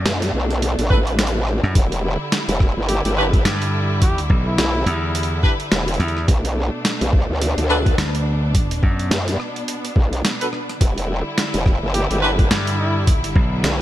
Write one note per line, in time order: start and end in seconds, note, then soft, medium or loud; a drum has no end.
0.00 1.71 B2 medium
0.00 1.71 A3 medium
0.00 1.71 D4 medium
0.05 0.32 F#2 medium
0.05 snare loud
0.05 closed hi-hat medium
0.22 snare soft
0.22 closed hi-hat medium
0.34 0.76 B1 loud
0.51 closed hi-hat soft
0.62 closed hi-hat medium
0.79 1.61 A1 medium
0.79 closed hi-hat soft
0.90 0.99 D4 medium
0.90 0.99 F#4 medium
0.90 0.99 A4 medium
0.90 0.99 B4 loud
0.90 kick loud
1.07 closed hi-hat soft
1.19 snare loud
1.19 closed hi-hat medium
1.27 closed hi-hat medium
1.47 cross-stick soft
1.63 1.73 F#2 medium
1.63 cross-stick soft
1.75 2.17 E1 loud
1.75 6.24 D3 medium
1.75 6.24 G3 medium
1.75 6.24 E4 medium
1.75 kick loud
1.75 closed hi-hat medium
1.92 closed hi-hat soft
2.32 snare loud
2.32 closed hi-hat medium
2.48 2.74 E1 loud
2.48 closed hi-hat medium
2.60 kick loud
2.60 cross-stick medium
2.77 3.02 G1 loud
2.89 2.99 G4 medium
2.89 closed hi-hat medium
3.05 3.43 G1 loud
3.05 3.13 G4 medium
3.05 closed hi-hat soft
3.17 3.25 D4 medium
3.17 3.25 E4 medium
3.17 3.25 G4 medium
3.17 3.25 B4 loud
3.33 kick loud
3.33 closed hi-hat soft
3.45 4.28 G2 medium
3.45 snare loud
3.45 closed hi-hat medium
3.62 closed hi-hat soft
4.02 4.19 G4 medium
4.02 kick loud
4.02 closed hi-hat medium
4.18 closed hi-hat soft
4.30 4.56 B1 medium
4.30 kick loud
4.47 5.03 E4 loud
4.58 4.85 B1 loud
4.58 snare loud
4.58 closed hi-hat medium
4.86 5.41 E2 loud
4.86 closed hi-hat soft
5.15 closed hi-hat medium
5.23 closed hi-hat soft
5.43 5.51 D4 medium
5.43 5.51 E4 medium
5.43 5.51 G4 medium
5.43 5.51 B4 loud
5.43 kick loud
5.60 closed hi-hat soft
5.72 5.98 E1 loud
5.72 snare loud
5.72 closed hi-hat medium
5.88 closed hi-hat soft
5.94 closed hi-hat soft
5.99 6.26 E2 loud
5.99 cross-stick soft
5.99 closed hi-hat soft
6.08 closed hi-hat soft
6.17 cross-stick soft
6.28 6.70 B1 loud
6.28 10.77 B2 medium
6.28 8.52 A3 medium
6.28 10.77 D4 medium
6.28 kick loud
6.28 closed hi-hat medium
6.45 closed hi-hat medium
6.85 snare loud
6.85 closed hi-hat medium
7.01 7.27 B1 medium
7.01 closed hi-hat medium
7.13 kick loud
7.29 7.55 D2 loud
7.42 closed hi-hat medium
7.57 7.96 D2 medium
7.57 closed hi-hat soft
7.70 7.78 D4 medium
7.70 7.78 F#4 medium
7.70 7.78 A4 medium
7.70 7.78 B4 loud
7.86 kick loud
7.86 closed hi-hat soft
7.98 8.81 D2 medium
7.98 snare loud
7.98 closed hi-hat medium
8.15 closed hi-hat medium
8.55 10.79 B3 medium
8.55 kick loud
8.55 closed hi-hat medium
8.71 closed hi-hat medium
8.83 9.09 F#2 loud
8.83 kick loud
8.99 closed hi-hat soft
9.11 9.37 F#2 loud
9.11 snare loud
9.11 closed hi-hat medium
9.28 snare soft
9.28 closed hi-hat medium
9.40 cross-stick medium
9.56 closed hi-hat soft
9.68 closed hi-hat medium
9.85 closed hi-hat medium
9.96 10.22 B1 loud
9.96 kick loud
10.13 closed hi-hat soft
10.25 snare loud
10.25 closed hi-hat medium
10.41 10.47 D4 medium
10.41 10.47 F#4 medium
10.41 10.47 A4 medium
10.41 10.47 B4 medium
10.41 closed hi-hat medium
10.53 cross-stick soft
10.69 cross-stick soft
10.69 closed hi-hat soft
10.81 11.23 E1 loud
10.81 13.82 D3 medium
10.81 13.82 G3 medium
10.81 13.82 E4 medium
10.81 kick loud
10.81 closed hi-hat medium
10.98 closed hi-hat medium
11.38 snare loud
11.38 closed hi-hat medium
11.54 11.80 E1 medium
11.54 closed hi-hat medium
11.66 kick loud
11.66 cross-stick medium
11.82 12.08 G1 loud
11.94 12.05 G4 medium
11.94 closed hi-hat medium
12.10 12.49 G1 medium
12.10 12.18 G4 medium
12.10 closed hi-hat medium
12.22 12.31 D4 medium
12.22 12.31 E4 medium
12.22 12.31 G4 medium
12.22 12.31 B4 loud
12.39 kick loud
12.39 closed hi-hat soft
12.51 13.34 G2 loud
12.51 snare loud
12.51 closed hi-hat medium
12.67 closed hi-hat medium
12.79 12.96 E4 medium
13.07 kick loud
13.07 closed hi-hat medium
13.24 closed hi-hat medium
13.35 13.62 B1 loud
13.35 kick loud
13.64 13.82 B1 loud
13.64 snare loud
13.64 closed hi-hat medium